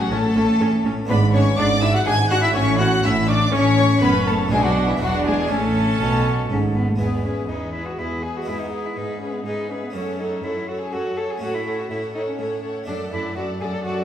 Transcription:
Already playing: harpsichord C#4 E4
0.00 cello F#3, violin section F#4 F#5
0.11 double bass section A1, cello section A2, harpsichord A2, cello A3, viola section C#4, violin section A4 A5
0.35 double bass section A1, cello section A2, harpsichord A2, viola section C#4
0.60 double bass section A1, cello section A2, harpsichord A2, viola section C#4
0.84 double bass section A1, cello section A2, harpsichord A2, viola section C#4
1.05 double bass section G#1, cello section G#2, harpsichord B3 D4 E4, cello B3, violin section B4
1.09 harpsichord G#2, viola section D4, violin section B5
1.32 cello C#4, viola section D4, violin section C#5 C#6
1.57 double bass section G#1, cello section G#2, harpsichord G#2, cello D4, viola section D4, violin section D5 D6
1.82 viola section D4, cello E4, violin section E5 E6
1.94 cello F#4, violin section F#5 F#6
2.05 double bass section G#1, cello section G#2, harpsichord G#2, viola section D4, cello G#4, violin section G#5 G#6
2.30 viola section D4, cello F#4, violin section F#5 F#6
2.42 cello E4, violin section E5 E6
2.51 double bass section A1, harpsichord A3 C#4 E4, cello C#4, violin section C#5 C#6
2.55 cello section A2, harpsichord A2, viola section C#4
2.79 viola section C#4, cello F#4, violin section F#5 F#6
3.03 double bass section A1, cello section A2, harpsichord A2, viola section C#4, cello E4, violin section E5 E6
3.28 viola section C#4, cello D4, violin section D5 D6
3.52 double bass section A1, cello section A2, harpsichord A2, cello C#4, viola section C#4, violin section C#5 C#6
3.78 viola section C#4
3.98 double bass section F#1, cello section F#2, harpsichord A3 C#4 F#4, cello B3, viola section C#4, violin section B4
4.02 harpsichord F#2, violin section B5
4.26 cello A3, violin section A4 A5
4.47 double bass section B1, cello G#3, harpsichord A3 D4 F#4
4.51 cello section B2, harpsichord B2, viola section D4, violin section G#4 G#5
4.63 cello F#3, violin section F#4 F#5
4.87 cello E3, violin section E4 E5
4.96 double bass section E1, cello F#3, harpsichord B3 D4 E4
5.00 harpsichord E2, cello section E2, viola section D4, violin section F#4 F#5
5.25 cello G#3, violin section G#4 G#5
5.46 double bass section A1, harpsichord A3 C#4 E4, cello A3
5.50 harpsichord A2, cello section A2, viola section C#4, violin section A4 A5
5.99 double bass section B1, cello section B2, harpsichord B2
6.49 double bass section G#1, cello section G#2, harpsichord G#2, cello C#4
6.74 cello B3
6.88 cello A3
6.96 harpsichord G#3 B3 E4
7.00 cello section E2, harpsichord E2, cello B3, viola section G#4, violin section B4 E5
7.24 cello C#4, viola section G#4, violin section B4 E5
7.48 cello section E2, harpsichord E2, cello D#4, viola section G#4, violin section B4 E5
7.73 cello E4, viola section G#4, violin section B4 E5
7.86 cello F#4
7.98 cello section E2, harpsichord E2, cello E4, viola section G#4, violin section B4 E5
8.22 cello G#4, viola section G#4, violin section B4 E5
8.36 cello F#4
8.42 harpsichord G#3 B3 E4
8.47 cello section G#2, harpsichord G#2, cello E4, viola section G#4, violin section B4 E5
8.60 cello D#4
8.72 viola section G#4, violin section B4 E5
8.85 cello E4
8.97 cello section G#2, harpsichord G#2, cello D#4, viola section G#4, violin section B4 E5
9.21 cello C#4, viola section G#4, violin section B4 E5
9.33 cello B3
9.45 cello section G#2, harpsichord G#2, cello D#4, viola section G#4, violin section B4 E5
9.70 cello C#4, viola section G#4, violin section B4 E5
9.83 cello B3
9.90 harpsichord A3 C#4 F#4, violin section F#5
9.95 harpsichord F#2, cello section F#2, cello C#4, viola section A4, violin section C#5
10.19 cello D#4, viola section A4, violin section C#5 F#5
10.43 cello section F#2, harpsichord F#2, cello E4, viola section A4, violin section C#5 F#5
10.68 cello F#4, viola section A4, violin section C#5 F#5
10.81 cello G#4
10.92 cello section F#2, harpsichord F#2, cello F#4, viola section A4, violin section C#5 F#5
11.17 viola section A4, cello A4, violin section C#5 F#5
11.30 cello G#4
11.38 harpsichord A3 C#4 F#4, violin section C#5 F#5
11.42 cello section A2, harpsichord A2, cello F#4, viola section A4
11.54 cello E4
11.65 viola section A4, violin section C#5 F#5
11.79 cello F#4
11.90 cello section A2, harpsichord A2, cello E4, viola section A4, violin section C#5 F#5
12.14 cello D#4, viola section A4, violin section C#5 F#5
12.28 cello C#4
12.39 cello section A2, harpsichord A2, viola section A4, violin section C#5 F#5
12.63 viola section A4, violin section C#5 F#5
12.84 harpsichord A3 D4 A4, cello D4, violin section F#5
12.88 cello section F#2, harpsichord F#2, viola section A4, violin section D5
13.11 harpsichord F#2, cello section F#2, cello E4, viola section A4, violin section D5 F#5
13.36 cello section F#2, harpsichord F#2, cello F#4, viola section A4, violin section D5 F#5
13.60 harpsichord F#2, cello section F#2, cello G#4, viola section A4, violin section D5 F#5
13.73 cello A4
13.84 harpsichord F#2, cello section F#2, cello F#4, viola section A4, violin section D5 F#5

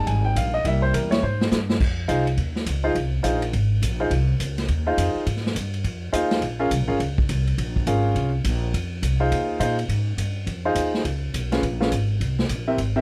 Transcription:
Already playing: grand piano G3 G#3 D#4
0.07 upright bass G#1, grand piano G#5, kick, ride
0.25 grand piano G5
0.36 upright bass A#1, grand piano F5, kick, hi-hat pedal, ride
0.54 grand piano D#5
0.64 upright bass C2, grand piano G3 A#3 E4 E5, kick, ride
0.82 grand piano C5
0.94 upright bass E2, grand piano A#4, kick, hi-hat pedal, ride
1.10 grand piano G3 A#3 E4 C#5, snare, ride
1.22 upright bass G#2, grand piano C5
1.41 snare
1.51 upright bass G2, snare, hi-hat pedal
1.69 snare
1.80 upright bass F2, kick, crash
2.08 upright bass C2, grand piano D#4 F4 G#4 C5 F5, kick, hi-hat pedal, ride
2.27 ride
2.37 upright bass D#2, kick, ride
2.56 snare
2.66 upright bass C#2, kick, hi-hat pedal, ride
2.84 grand piano D#4 F4 G#4 C5 F5
2.95 upright bass C2, kick, ride
3.23 upright bass A#1, grand piano D#4 F4 G#4 C5 F5, kick, hi-hat pedal, ride
3.42 ride
3.53 upright bass G#1, kick, ride
3.82 upright bass A#1, kick, hi-hat pedal, ride
4.00 grand piano D#4 F4 G#4 C5 F5
4.10 upright bass C2, kick, ride
4.39 upright bass C#2, kick, hi-hat pedal, ride
4.58 snare, ride
4.68 upright bass D#2, kick, ride
4.87 grand piano D#4 F4 G#4 C5 F5
4.97 upright bass F2, kick, hi-hat pedal, ride
5.15 muted upright bass stroke
5.26 upright bass G#2, kick, ride
5.37 snare
5.46 snare
5.55 upright bass G2, kick, hi-hat pedal, ride
5.74 ride
5.84 upright bass F2, kick, ride
6.12 upright bass D#2, grand piano D#4 F4 G#4 C5 F5, kick, hi-hat pedal, ride
6.31 snare, ride
6.41 upright bass A#1, kick, ride
6.59 grand piano C#4 F4 G#4 A#4 F5
6.71 upright bass C2, kick, hi-hat pedal, ride
6.80 upright bass A#1
6.88 upright bass G#1, grand piano C#4 F4 G#4 A#4 F5
7.00 upright bass C#2, kick, ride
7.18 kick
7.29 upright bass C2, kick, hi-hat pedal, ride
7.47 ride
7.58 upright bass A#1, kick, ride
7.76 kick
7.87 upright bass G#1, grand piano C#4 F4 G#4 A#4 F5, kick, hi-hat pedal, ride
8.15 upright bass C2, kick, ride
8.44 upright bass A#1, kick, hi-hat pedal, ride
8.74 upright bass F2, kick, ride
9.02 upright bass C2, kick, hi-hat pedal, ride
9.20 grand piano D#4 F4 G#4 C5 F5
9.31 upright bass D#2, kick, ride
9.60 upright bass A#2, grand piano D#4 F4 G#4 C5 F5, kick, hi-hat pedal, ride
9.79 ride
9.89 upright bass G#2, kick, ride
10.17 upright bass G2, kick, hi-hat pedal, ride
10.47 upright bass F2, kick, ride
10.65 grand piano D#4 F4 G#4 C5 F5
10.75 upright bass D#2, kick, hi-hat pedal, ride
10.94 snare
11.04 upright bass C#2, kick, ride
11.34 upright bass B1, kick, hi-hat pedal, ride
11.52 grand piano C#4 F4 G#4 B4 F5, snare, ride
11.63 upright bass A#1, kick, ride
11.80 grand piano C#4 F4 G#4 B4 F5, snare
11.91 upright bass G#1, kick, hi-hat pedal, ride
12.20 upright bass C2, kick, ride
12.39 snare
12.49 upright bass A#1, kick, hi-hat pedal, ride
12.67 grand piano C4 E4 G4 A#4 E5
12.78 upright bass G#1, kick, ride
12.96 grand piano C4 E4 G4 A#4 E5

